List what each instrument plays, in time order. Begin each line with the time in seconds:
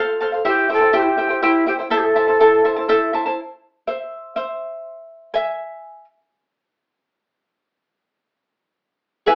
Already playing: quena F4, charango A4 C5 F5
0.21 charango A4 C5 F5
0.32 charango C5 F5
0.45 charango E4 G4 C5 E5 G5, quena G4
0.69 charango E4 C5 E5 G5, quena A4
0.81 charango E4 C5 G5
0.93 charango E4 G4 C5 E5 G5
0.97 quena G4
1.03 quena E4
1.10 quena G4
1.17 charango E4 C5 E5 G5
1.29 charango E4 C5 G5
1.43 charango E4 G4 C5 E5 G5, quena E4
1.66 charango E4 C5 E5 G5, quena G4
1.79 charango E4 C5 G5
1.90 charango E4 A4 C5 E5 A5, quena A4
1.98 quena G4
2.05 quena A4
2.16 charango E4 C5 E5 A5
2.28 charango E4 C5 A5
2.40 charango E4 A4 C5 E5 A5
2.65 charango E4 C5 E5 A5
2.77 charango E4 C5 A5
2.89 charango E4 A4 C5 E5 A5
3.13 charango E4 C5 E5 A5
3.26 charango E4 C5 A5
3.87 charango C5 E5
4.36 charango C5 E5
5.34 charango E5 G#5
9.26 charango E4 G#4 B4 E5 G#5